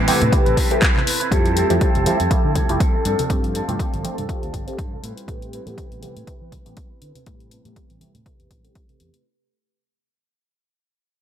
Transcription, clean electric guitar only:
0.07 G3 C4 E4 B4
0.21 C4 E4 B4
0.46 C4 E4 B4
0.57 G3 C4 E4 B4
0.82 G3 C4 E4 B4
0.95 C4 E4 B4
1.20 C4 E4 B4
1.31 G3 C4 E4 A4
1.56 G3 C4 E4 A4
1.81 G3 C4 E4 A4
2.05 G3 C4 E4 A4
2.19 C4 E4 A4
2.44 C4 E4 A4
2.55 G3 C4 E4 A4
2.79 G3 C4 E4 A4
2.93 C4 E4 A4
3.05 F3 C4 D4 A4
3.54 F3 C4 D4 A4
3.79 F3 C4 D4 A4
4.03 F3 C4 D4 A4
4.17 C4 D4 A4
4.42 C4 D4 A4
4.53 F3 C4 D4 A4
4.78 F3 C4 D4 A4
4.91 C4 D4 A4
5.02 G3 C4 E4 B4
5.52 G3 C4 E4 B4
5.78 C4 E4 B4
6.02 G3 C4 E4 B4
6.15 C4 E4 B4
6.40 C4 E4 B4
6.51 G3 C4 E4 B4
6.76 G3 C4 E4 B4
6.90 C4 E4 B4
7.15 C4 E4 B4
7.26 G3 C4 E4
7.51 G3 C4 E4 B4
7.76 G3
8.00 G3 C4 E4 B4
8.14 C4 E4 B4
8.39 C4 E4 B4
8.50 G3 C4 B4
8.75 G3 C4
8.92 C4
9.15 C4 E4

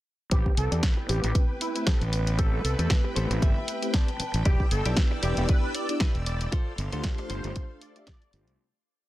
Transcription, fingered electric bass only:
0.32 A1
0.57 C2
0.72 E2
1.09 A1
1.24 A1
2.01 A1
2.64 C2
2.79 E2
3.16 A1
3.30 A1
3.42 G1
4.20 muted fingered electric bass stroke
4.34 A1
4.46 E1
4.71 G1
4.85 B1
5.23 E1
5.37 E1
6.15 E1
6.78 G1
6.93 D2
7.30 G1
7.44 G1
8.33 G1
8.48 C2

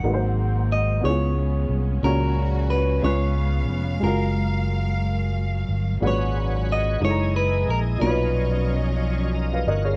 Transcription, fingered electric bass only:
0.04 G#1
1.04 C#2
1.69 C2
2.03 C#2
3.03 C#2
3.70 F1
4.03 F#1
5.69 G1
6.02 G#1
7.01 F#1
7.68 A#1
8.01 B1
9.67 G1

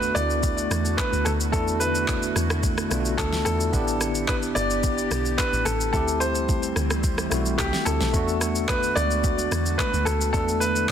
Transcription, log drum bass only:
Already playing: E2
0.16 D2
0.71 E2
1.13 D2
1.26 D2
1.53 E2
2.36 E2
2.91 B1
3.19 D2
3.46 E2
3.73 A1
4.56 G1
5.11 B1
5.53 A1
5.66 A1
5.94 D2
6.76 D2
7.31 B1
7.59 C2
7.86 D2
8.01 B1
8.14 E2
8.97 D2
9.52 E2
9.93 D2
10.07 D2
10.34 E2

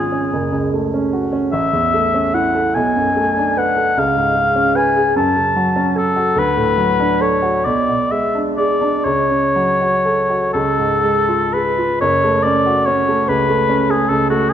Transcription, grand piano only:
Already playing: G#1 G#2 B3 C#4 F4
0.12 C#4
0.33 F#1
0.52 C#2
0.73 A3
0.94 C#4
1.13 F#4
1.32 C#4
1.53 A1
1.73 E2
1.94 A3
2.14 C#4
2.34 E4
2.55 A4
2.76 B1
2.96 F#2
3.16 A3
3.37 D4
3.57 B4
3.77 A4
3.97 C#2
4.16 G#2
4.36 G#3
4.56 C#4
4.75 B4
4.96 G#4
5.16 F#2
5.36 C#3
5.56 F#3
5.76 C#4
5.96 A4
6.16 F#4
6.36 D2
6.57 A2
6.78 F#3
7.00 D4
7.21 A4
7.42 F#4
7.66 B1
7.88 B2
8.12 G#3
8.35 D4
8.58 G#4
8.81 D4
9.06 C#2
9.31 C#3
9.56 F#3
9.81 F#4
10.05 A4
10.30 F#4
10.55 C#2
10.79 G#2
11.03 G#3
11.29 F4
11.54 G#4
11.78 F4
12.01 F#1
12.24 A3
12.45 C#4
12.66 F#4
12.87 C#4
13.08 A3
13.29 C#2
13.49 A3
13.69 C#4
13.90 A3
14.10 C#2
14.31 A3

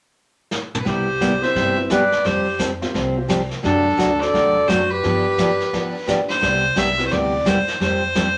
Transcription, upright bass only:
0.86 C2
1.55 G1
2.25 F2
2.94 C2
3.64 F#2
3.99 D2
4.34 E2
4.69 F#2
5.04 G2
6.43 C2
6.77 C2
7.11 D2
7.46 E2
7.81 F2

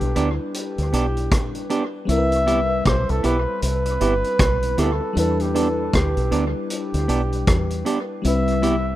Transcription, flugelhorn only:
Already playing: G4
0.56 G4
2.10 E5
2.87 C5
3.10 A4
3.26 B4
3.64 B4
4.80 A4
5.18 A4
5.42 G4
5.57 A4
5.96 G4
6.73 G4
8.27 E5

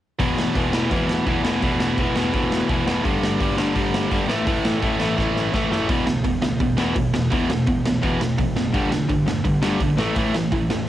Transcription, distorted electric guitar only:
0.19 E2 B2 E3
0.54 E2 B2 E3
0.71 E2 B2 E3
0.90 E2 B2 E3
1.25 E2 B2 E3
1.43 E2 B2 E3
1.62 E2 B2 E3
1.98 E2 B2 E3
2.15 E2 B2 E3
2.33 E2 B2 E3
2.69 E2 B2 E3
2.86 E2 B2 E3
3.05 G2 D3 G3
3.40 G2 D3 G3
3.58 G2 D3 G3
3.74 G2 D3 G3
4.11 G2 D3 G3
4.27 A2 E3 A3
4.46 A2 E3 A3
4.81 A2 E3 A3
4.98 A2 E3 A3
5.16 A2 E3 A3
5.52 A2 E3 A3
5.71 A2 E3 A3
5.89 E2 B2 E3
6.06 E2 B2
6.24 E2 B2
6.42 E2 B2
6.60 E2 B2
6.77 E2 B2 E3
6.95 E2 B2
7.13 E2 B2
7.30 E2 B2 E3
7.50 E2 B2
7.67 E2 B2
7.86 E2 B2
8.03 E2 B2 E3
8.22 E2 B2
8.38 E2 B2
8.57 E2 B2
8.74 G2 D3 G3
8.92 G2 D3
9.09 G2 D3
9.28 G2 D3
9.44 G2 D3
9.63 G2 D3 G3
9.82 G2 D3
9.99 A2 E3 A3
10.18 A2 E3 A3
10.34 A2 E3
10.52 A2 E3
10.70 A2 E3

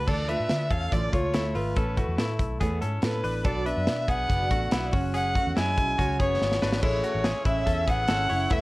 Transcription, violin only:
0.08 D5
0.29 E5
0.71 F5
0.92 D5
1.13 C#5
1.55 B4
3.03 B4
3.45 D5
3.66 E5
4.08 F#5
5.15 F#5
5.58 G#5
6.21 C#5
6.84 C#5
7.47 E5
7.89 F#5
8.52 E5

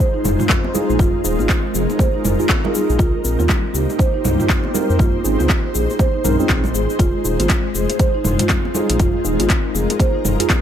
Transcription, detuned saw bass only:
0.25 F1
0.90 A#1
0.99 F1
1.25 D#1
1.39 G#1
1.75 F1
2.24 F1
2.89 A#1
2.99 C2
3.25 A#1
3.39 D#2
3.74 C2
4.25 C2
4.90 F2
4.99 A#1
5.25 G#1
5.40 C#2
5.75 A#1
6.25 A#1
6.49 A#1
6.65 A#1
6.74 G#1
6.99 F1
7.25 D#1
7.40 G#1
7.75 F1
8.25 F1
8.90 A#1
9.00 F1
9.25 D#1
9.40 G#1
9.75 F1
10.25 F1

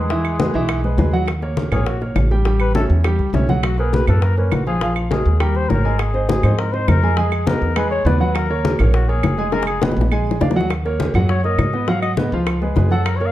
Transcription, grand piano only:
0.11 E3 E4 E5
0.40 G#3 G#4 B4
0.54 E3 E4 E5
0.84 G#3 G#4 B4
0.99 G#3 G#4 B4
1.13 F#3 F#4 F#5
1.42 A#3 A#4 C#5
1.72 A#3 A#4 C#5
2.01 A#3 A#4 C#5
2.31 G3 G4 G5
2.46 G3 G4 G5
2.76 C#4 C#5 E5
3.05 G3 G4 G5
3.35 C#4 C#5 E5
3.49 F#3 F#4 F#5
3.79 A#3 A#4 B4
4.08 A#3 A#4 B4
4.38 A#3 A#4 B4
4.67 F3 F4 F5
4.82 F3 F4 F5
5.11 G#3 G#4 A#4
5.40 G3 G4 G5
5.70 A#3 A#4 C#5
5.85 G#3 G#4 G#5
6.14 C4 C5 D#5
6.43 C4 C5 D#5
6.73 C4 C5 D#5
7.03 G#3 G#4 G#5
7.18 G#3 G#4 G#5
7.47 B3 B4 D#5
7.77 G#3 G#4 G#5
8.06 B3 B4 D5
8.20 F#3 F#4 F#5
8.50 A#3 A#4 C#5
8.80 A#3 A#4 C#5
9.09 A#3 A#4 C#5
9.38 G#3 G#4 G#5
9.53 G#3 G#4 G#5
9.83 B3 B4 D#5
10.12 G#3 G#4 G#5
10.41 D4 D5 F5
10.56 F#3 F#4 F#5
10.85 A#3 A#4 C#5
11.15 F#3 F#4 F#5
11.45 A#3 A#4 C#5
11.74 B3 B4 D#5
11.88 F#3 F#4 F#5
12.18 B3 B4 D#5
12.33 F3 F4 F5
12.62 G#3 G#4 B4
12.77 G#3 G#4 B4
12.91 F#3 F#4 F#5
13.21 A#3 A#4 C#5

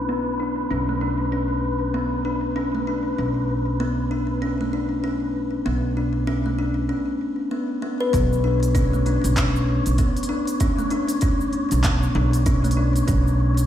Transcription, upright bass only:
Already playing: B1
0.71 B1
3.19 B1
5.66 B1
8.14 B1
9.24 B1
9.87 B1
11.72 B1
12.15 B1
13.09 B1

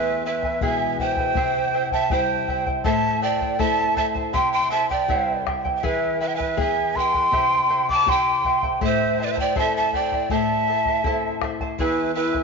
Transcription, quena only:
Already playing: E5
0.26 E5
0.63 G#5
0.99 G5
1.93 A5
2.12 G5
2.85 A5
3.23 G5
3.60 A5
3.97 A5
4.34 C6
4.53 C6
4.71 A5
4.90 G5
5.76 G5
5.84 E5
6.21 E5
6.28 G5
6.36 E5
6.60 G#5
6.96 C6
7.90 D6
8.09 C6
8.84 E5
9.21 D5 E5
9.31 E5
9.39 G5
9.58 A5
9.76 A5
9.95 G5
10.31 A5
11.79 E4
12.16 E4

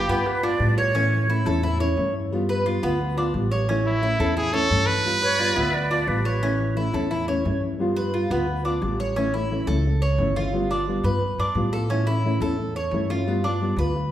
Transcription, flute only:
Already playing: G4
0.27 B4
0.44 D5
0.78 C#5
5.22 C#5
5.39 D5
5.56 E5
5.74 D5
6.08 B4

